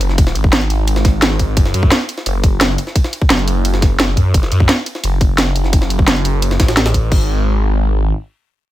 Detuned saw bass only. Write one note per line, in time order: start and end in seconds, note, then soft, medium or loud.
0.01 0.34 F#1 medium
0.35 1.21 G#1 loud
1.22 1.55 G#1 medium
1.57 1.73 F#1 loud
1.74 1.90 F#2 medium
2.26 2.42 F#1 medium
2.44 2.77 F#1 medium
3.30 4.16 F#1 medium
4.17 4.33 F#2 medium
4.34 4.50 F#1 loud
4.52 4.68 F#2 medium
5.04 5.20 F#1 medium
5.21 5.54 F#1 loud
5.56 6.06 F#1 loud
6.08 6.58 F#1 medium
6.60 7.10 A1 loud
7.12 8.12 G#1 loud